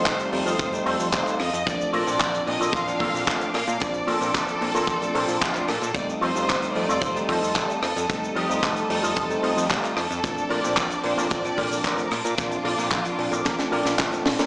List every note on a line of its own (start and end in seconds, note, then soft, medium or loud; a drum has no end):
0.00 0.29 G3 medium
0.00 0.29 A3 medium
0.00 0.29 C4 medium
0.00 0.30 D#4 medium
0.00 0.12 F4 loud
0.00 0.13 A4 loud
0.00 1.63 A4 medium
0.00 0.13 C5 loud
0.00 0.32 C5 loud
0.00 0.13 D#5 loud
0.00 1.63 F5 medium
0.05 0.26 F1 medium
0.05 kick loud
0.05 cross-stick medium
0.05 clap loud
0.05 closed hi-hat medium
0.05 shaker medium
0.19 closed hi-hat medium
0.19 shaker medium
0.32 0.43 F2 loud
0.32 0.69 G3 medium
0.32 0.69 A3 medium
0.32 0.70 C4 medium
0.32 0.70 D#4 loud
0.32 1.09 C5 loud
0.32 open hi-hat loud
0.45 0.56 F2 medium
0.45 0.66 F4 medium
0.45 0.66 A4 medium
0.45 0.67 C5 medium
0.45 0.67 D#5 loud
0.45 shaker medium
0.59 0.79 F1 medium
0.59 kick loud
0.59 closed hi-hat medium
0.59 shaker medium
0.72 1.10 G3 medium
0.72 1.10 A3 medium
0.72 1.10 C4 medium
0.72 1.10 D#4 loud
0.72 closed hi-hat medium
0.72 shaker medium
0.85 0.96 F2 loud
0.85 1.06 F4 loud
0.85 1.06 A4 loud
0.85 1.07 C5 loud
0.85 1.07 D#5 loud
0.85 1.11 A5 medium
0.85 open hi-hat loud
0.99 1.10 F2 medium
0.99 shaker medium
1.12 1.23 F1 medium
1.12 1.35 G3 medium
1.12 1.35 A3 medium
1.12 1.35 C4 medium
1.12 1.35 D#4 loud
1.12 1.38 C5 loud
1.12 1.63 F5 medium
1.12 kick loud
1.12 clap loud
1.12 closed hi-hat medium
1.12 shaker medium
1.26 muted clean electric guitar stroke medium
1.26 clap soft
1.26 closed hi-hat medium
1.26 shaker medium
1.39 1.50 F2 medium
1.39 1.65 D#5 loud
1.39 muted clean electric guitar stroke soft
1.39 cross-stick medium
1.39 open hi-hat loud
1.53 1.63 F2 loud
1.53 muted clean electric guitar stroke soft
1.53 closed hi-hat medium
1.53 shaker medium
1.66 1.87 A#1 loud
1.66 2.03 F3 medium
1.66 2.04 A3 medium
1.66 2.04 C4 medium
1.66 2.04 D4 loud
1.66 1.93 D5 loud
1.66 5.91 A5 medium
1.66 5.91 D6 medium
1.66 kick loud
1.66 closed hi-hat medium
1.66 shaker medium
1.81 shaker medium
1.93 2.04 A#2 medium
1.93 2.27 F4 loud
1.93 2.27 A4 loud
1.93 2.27 A#4 loud
1.93 2.44 D5 loud
1.93 2.28 D5 loud
1.93 open hi-hat loud
2.06 2.17 A#2 medium
2.06 2.43 F3 medium
2.06 2.44 C4 medium
2.06 2.44 D4 loud
2.06 shaker medium
2.20 2.40 A#1 medium
2.20 kick loud
2.20 cross-stick medium
2.20 clap loud
2.20 closed hi-hat medium
2.20 shaker medium
2.34 closed hi-hat medium
2.34 shaker medium
2.46 2.57 A#2 loud
2.46 2.84 F3 medium
2.46 2.84 C4 medium
2.46 2.84 D4 loud
2.46 2.74 D#5 loud
2.46 open hi-hat loud
2.60 2.70 A#2 medium
2.60 2.80 F4 medium
2.60 2.80 A4 medium
2.60 2.81 A#4 medium
2.60 2.81 D5 loud
2.60 shaker medium
2.73 2.93 A#1 medium
2.73 3.54 F5 loud
2.73 kick loud
2.73 closed hi-hat medium
2.73 shaker medium
2.86 3.24 F3 medium
2.86 3.24 C4 medium
2.86 3.24 D4 loud
2.86 closed hi-hat soft
2.86 shaker medium
3.00 3.10 A#2 loud
3.00 3.20 F4 loud
3.00 3.21 A4 loud
3.00 3.21 A#4 loud
3.00 3.21 D5 loud
3.00 kick medium
3.00 open hi-hat loud
3.14 3.24 A#2 medium
3.14 shaker medium
3.27 3.37 A#1 medium
3.27 3.49 F3 medium
3.27 3.49 A3 medium
3.27 3.49 C4 medium
3.27 3.49 D4 loud
3.27 kick loud
3.27 clap loud
3.27 closed hi-hat medium
3.27 shaker medium
3.40 muted clean electric guitar stroke medium
3.40 closed hi-hat medium
3.40 shaker soft
3.53 3.64 A#2 medium
3.53 3.79 F5 loud
3.53 muted clean electric guitar stroke soft
3.53 cross-stick medium
3.53 open hi-hat loud
3.67 3.78 A#2 loud
3.67 muted clean electric guitar stroke soft
3.67 closed hi-hat medium
3.67 shaker medium
3.80 4.01 A#1 loud
3.80 4.17 F3 medium
3.80 4.18 C4 medium
3.80 4.18 D4 loud
3.80 4.08 D5 loud
3.80 kick loud
3.80 closed hi-hat medium
3.80 shaker medium
3.94 shaker medium
4.07 4.18 A#2 medium
4.07 4.41 F4 loud
4.07 4.41 A4 loud
4.07 5.42 A4 loud
4.07 4.42 A#4 loud
4.07 4.42 D5 loud
4.07 open hi-hat loud
4.20 4.31 A#2 medium
4.20 4.58 F3 medium
4.20 4.58 C4 medium
4.20 4.58 D4 medium
4.20 shaker medium
4.34 4.55 A#1 medium
4.34 kick loud
4.34 cross-stick medium
4.34 clap loud
4.34 closed hi-hat medium
4.34 shaker medium
4.48 closed hi-hat medium
4.48 shaker soft
4.60 4.71 A#2 loud
4.60 4.98 F3 medium
4.60 4.98 C4 medium
4.60 4.98 D4 loud
4.60 open hi-hat loud
4.74 4.85 A#2 medium
4.74 4.94 F4 medium
4.74 4.95 A4 medium
4.74 4.95 A#4 medium
4.74 4.95 D5 loud
4.74 shaker medium
4.87 5.08 A#1 loud
4.87 kick loud
4.87 closed hi-hat medium
4.87 shaker medium
5.01 5.12 F3 medium
5.01 5.12 A3 medium
5.01 5.12 C4 medium
5.01 5.12 D4 loud
5.01 closed hi-hat medium
5.01 shaker medium
5.14 5.25 A#2 loud
5.14 5.51 F3 medium
5.14 5.52 C4 medium
5.14 5.52 D4 loud
5.14 5.35 F4 loud
5.14 5.35 A4 loud
5.14 5.35 A#4 loud
5.14 5.36 C5 loud
5.14 open hi-hat loud
5.28 5.38 A#2 medium
5.28 shaker medium
5.41 5.62 A#1 medium
5.41 5.69 F4 medium
5.41 kick loud
5.41 clap loud
5.41 shaker medium
5.54 5.68 F3 medium
5.54 5.68 A3 medium
5.54 5.69 C4 medium
5.54 5.69 D4 medium
5.54 muted clean electric guitar stroke medium
5.54 clap soft
5.54 closed hi-hat medium
5.54 shaker medium
5.68 5.78 A#2 loud
5.68 5.96 A4 medium
5.68 muted clean electric guitar stroke soft
5.68 cross-stick medium
5.68 open hi-hat loud
5.81 5.92 A#2 loud
5.81 muted clean electric guitar stroke soft
5.81 closed hi-hat medium
5.81 shaker medium
5.94 6.15 F1 loud
5.94 6.32 G3 medium
5.94 6.32 A3 medium
5.94 6.32 C4 medium
5.94 6.32 D#4 loud
5.94 10.20 A4 medium
5.94 6.07 D5 loud
5.94 8.08 F5 medium
5.94 10.20 D#6 medium
5.94 kick loud
5.94 closed hi-hat medium
5.94 shaker medium
6.09 shaker medium
6.21 6.32 F2 medium
6.21 6.55 F4 loud
6.21 6.55 A4 loud
6.21 6.72 C5 loud
6.21 6.56 C5 loud
6.21 6.56 D#5 loud
6.21 open hi-hat loud
6.35 6.45 F2 medium
6.35 6.72 G3 medium
6.35 6.72 A3 medium
6.35 6.73 C4 medium
6.35 6.73 D#4 medium
6.35 shaker medium
6.49 6.69 F1 medium
6.49 kick loud
6.49 cross-stick medium
6.49 clap loud
6.49 closed hi-hat medium
6.49 shaker medium
6.62 closed hi-hat medium
6.62 shaker medium
6.75 6.86 F2 loud
6.75 7.12 G3 medium
6.75 7.13 A3 medium
6.75 7.13 C4 medium
6.75 7.13 D#4 loud
6.75 7.03 D5 loud
6.75 open hi-hat loud
6.88 6.99 F2 medium
6.88 7.09 F4 medium
6.88 7.09 A4 medium
6.88 7.09 C5 medium
6.88 7.10 F5 loud
6.88 shaker medium
7.02 7.22 F1 medium
7.02 7.29 C5 loud
7.02 kick loud
7.02 closed hi-hat medium
7.02 shaker medium
7.15 7.52 G3 medium
7.15 7.53 A3 medium
7.15 7.53 C4 medium
7.15 7.53 D#4 loud
7.15 closed hi-hat medium
7.15 shaker soft
7.28 7.39 F2 loud
7.28 7.49 F4 loud
7.28 7.49 A4 loud
7.28 7.79 A4 loud
7.28 7.49 C5 loud
7.28 7.50 D#5 loud
7.28 kick medium
7.28 open hi-hat loud
7.43 7.53 F2 medium
7.43 shaker medium
7.55 7.66 F1 medium
7.55 7.77 G3 medium
7.55 7.78 A3 medium
7.55 7.78 C4 medium
7.55 7.78 D#4 loud
7.55 kick loud
7.55 clap loud
7.55 shaker medium
7.68 muted clean electric guitar stroke medium
7.68 closed hi-hat soft
7.68 shaker soft
7.82 7.93 F2 medium
7.82 8.33 A4 loud
7.82 muted clean electric guitar stroke soft
7.82 cross-stick medium
7.82 open hi-hat loud
7.95 8.06 F2 loud
7.95 muted clean electric guitar stroke soft
7.95 closed hi-hat medium
7.95 shaker medium
8.09 8.30 F1 loud
8.09 8.46 G3 medium
8.09 8.46 A3 medium
8.09 8.47 C4 medium
8.09 8.47 D#4 loud
8.09 10.22 D#4 medium
8.09 kick loud
8.09 closed hi-hat medium
8.09 shaker medium
8.24 shaker medium
8.35 8.46 F2 medium
8.35 8.69 F4 loud
8.35 8.63 G4 medium
8.35 8.70 A4 loud
8.35 8.70 C5 loud
8.35 8.70 D#5 loud
8.35 open hi-hat loud
8.49 8.60 F2 medium
8.49 8.86 G3 medium
8.49 8.87 A3 medium
8.49 8.87 C4 medium
8.49 8.87 D#4 medium
8.49 shaker medium
8.63 8.83 F1 medium
8.63 9.64 A4 loud
8.63 kick loud
8.63 cross-stick medium
8.63 clap loud
8.63 shaker medium
8.76 closed hi-hat medium
8.76 shaker medium
8.89 9.00 F2 loud
8.89 9.27 G3 medium
8.89 9.27 A3 medium
8.89 9.27 C4 medium
8.89 9.27 D#4 loud
8.89 open hi-hat loud
9.02 9.13 F2 medium
9.02 9.23 F4 medium
9.02 9.23 A4 medium
9.02 9.24 C5 medium
9.02 9.24 D#5 loud
9.02 shaker medium
9.16 9.37 F1 medium
9.16 kick loud
9.16 closed hi-hat medium
9.16 shaker medium
9.29 9.67 G3 medium
9.29 9.67 A3 medium
9.29 9.67 C4 medium
9.29 9.67 D#4 loud
9.29 closed hi-hat medium
9.29 shaker medium
9.42 9.53 F2 loud
9.42 9.63 F4 loud
9.42 9.63 A4 loud
9.42 9.64 C5 loud
9.42 9.64 D#5 loud
9.42 open hi-hat loud
9.57 9.67 F2 medium
9.57 shaker medium
9.63 9.70 G4 medium
9.69 9.81 F1 medium
9.69 9.92 G3 medium
9.69 9.92 A3 medium
9.69 9.92 C4 medium
9.69 9.92 D#4 loud
9.69 9.97 F4 medium
9.69 kick loud
9.69 clap loud
9.69 closed hi-hat medium
9.69 shaker medium
9.82 muted clean electric guitar stroke medium
9.82 clap soft
9.82 closed hi-hat medium
9.82 shaker soft
9.96 10.07 F2 medium
9.96 10.51 A4 loud
9.96 muted clean electric guitar stroke soft
9.96 cross-stick medium
9.96 open hi-hat loud
10.10 10.20 F2 loud
10.10 muted clean electric guitar stroke soft
10.10 closed hi-hat medium
10.10 shaker medium
10.23 10.44 A#1 loud
10.23 10.61 F3 medium
10.23 10.61 A3 medium
10.23 10.61 C4 medium
10.23 10.61 D4 loud
10.23 14.46 A5 medium
10.23 14.46 D6 medium
10.23 kick loud
10.23 closed hi-hat medium
10.23 shaker medium
10.38 shaker medium
10.50 10.61 A#2 medium
10.50 10.84 F4 loud
10.50 10.84 A4 loud
10.50 10.84 A#4 loud
10.50 11.04 D5 loud
10.50 10.85 D5 loud
10.50 open hi-hat loud
10.63 10.74 A#2 medium
10.63 11.01 F3 medium
10.63 11.01 C4 medium
10.63 11.01 D4 loud
10.63 shaker medium
10.77 10.97 A#1 medium
10.77 kick loud
10.77 cross-stick medium
10.77 clap loud
10.77 closed hi-hat medium
10.77 shaker medium
10.91 closed hi-hat medium
10.91 shaker medium
11.03 11.14 A#2 medium
11.03 11.41 F3 medium
11.03 11.41 C4 medium
11.03 11.41 D4 loud
11.03 11.29 C5 medium
11.03 open hi-hat loud
11.17 11.27 A#2 medium
11.17 11.37 F4 medium
11.17 11.38 A4 medium
11.17 11.38 A#4 medium
11.17 11.38 D5 loud
11.17 shaker medium
11.30 11.51 A#1 medium
11.30 11.85 D5 loud
11.30 kick loud
11.30 closed hi-hat medium
11.30 shaker medium
11.44 11.81 F3 medium
11.44 11.81 C4 medium
11.44 11.81 D4 loud
11.44 closed hi-hat medium
11.44 shaker medium
11.57 11.68 A#2 loud
11.57 11.77 F4 loud
11.57 11.78 A4 loud
11.57 11.78 A#4 loud
11.57 11.78 D5 loud
11.57 kick medium
11.57 open hi-hat loud
11.71 11.81 A#2 medium
11.71 shaker medium
11.84 11.94 A#1 medium
11.84 12.06 F3 medium
11.84 12.06 A3 medium
11.84 12.07 C4 medium
11.84 12.07 D4 loud
11.84 12.11 A#4 medium
11.84 kick loud
11.84 clap loud
11.84 closed hi-hat medium
11.84 shaker medium
11.97 muted clean electric guitar stroke medium
11.97 closed hi-hat medium
11.97 shaker medium
12.10 12.21 A#2 medium
12.10 13.99 F4 medium
12.10 muted clean electric guitar stroke soft
12.10 cross-stick medium
12.10 open hi-hat loud
12.24 12.35 A#2 loud
12.24 muted clean electric guitar stroke soft
12.24 closed hi-hat medium
12.24 shaker medium
12.38 12.58 A#1 loud
12.38 12.75 F3 medium
12.38 12.75 C4 medium
12.38 12.75 D4 loud
12.38 kick loud
12.38 closed hi-hat loud
12.38 shaker medium
12.51 closed hi-hat medium
12.51 shaker medium
12.64 12.75 A#2 medium
12.64 12.98 F4 loud
12.64 12.98 A4 loud
12.64 12.99 A#4 loud
12.64 12.99 D5 loud
12.64 open hi-hat loud
12.78 12.88 A#2 medium
12.78 13.15 F3 medium
12.78 13.15 C4 medium
12.78 13.16 D4 medium
12.78 shaker medium
12.91 13.12 A#1 medium
12.91 kick loud
12.91 cross-stick medium
12.91 clap loud
12.91 shaker medium
13.05 closed hi-hat medium
13.05 shaker soft
13.18 13.28 A#2 medium
13.18 13.55 F3 medium
13.18 13.56 C4 medium
13.18 13.56 D4 loud
13.18 open hi-hat loud
13.31 13.42 A#2 medium
13.31 13.52 F4 medium
13.31 13.52 A4 medium
13.31 13.52 A#4 medium
13.31 13.53 D5 loud
13.31 closed hi-hat medium
13.31 shaker medium
13.45 13.56 A#1 medium
13.45 kick loud
13.45 snare medium
13.45 closed hi-hat loud
13.45 shaker medium
13.58 13.69 F3 medium
13.58 13.69 A3 medium
13.58 13.69 C4 medium
13.58 13.70 D4 loud
13.58 snare medium
13.58 closed hi-hat medium
13.58 shaker medium
13.71 13.82 A#2 medium
13.71 14.09 F3 loud
13.71 14.09 C4 medium
13.71 14.09 D4 loud
13.71 13.92 F4 loud
13.71 13.92 A4 loud
13.71 13.92 A#4 loud
13.71 13.93 D5 loud
13.71 open hi-hat loud
13.85 13.95 A#2 medium
13.85 snare medium
13.85 shaker medium
13.99 14.19 A#1 medium
13.99 kick loud
13.99 snare medium
13.99 clap loud
13.99 closed hi-hat medium
13.99 shaker medium
14.12 14.26 F3 medium
14.12 14.26 A3 medium
14.12 14.26 C4 medium
14.12 14.26 D4 medium
14.12 muted clean electric guitar stroke medium
14.12 closed hi-hat medium
14.12 shaker medium
14.25 14.36 A#2 medium
14.25 muted clean electric guitar stroke soft
14.25 snare loud
14.25 open hi-hat loud
14.39 14.46 A#2 loud
14.39 muted clean electric guitar stroke soft
14.39 snare medium
14.39 closed hi-hat medium
14.39 shaker medium